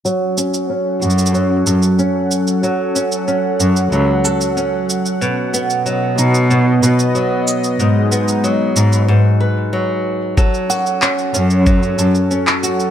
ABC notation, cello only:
X:1
M:4/4
L:1/8
Q:1/4=93
K:F#dor
V:1 name="Cello" clef=bass
z3 F,,2 F,, z2 | z3 F,, C,, z3 | z3 B,,2 B,, z2 | z3 G,, z4 |
z3 F,,2 F,, z2 |]